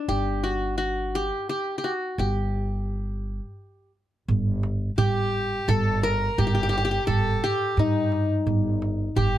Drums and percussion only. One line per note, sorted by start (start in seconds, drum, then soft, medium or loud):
4.29 darbuka dum medium
4.63 darbuka tek medium
4.98 darbuka dum medium
5.68 darbuka dum medium
6.03 darbuka tek medium
6.38 darbuka dum medium
6.73 darbuka tek medium
7.08 darbuka dum medium
7.78 darbuka dum medium
8.12 darbuka tek medium
8.47 darbuka dum medium
8.82 darbuka tek medium
9.17 darbuka dum loud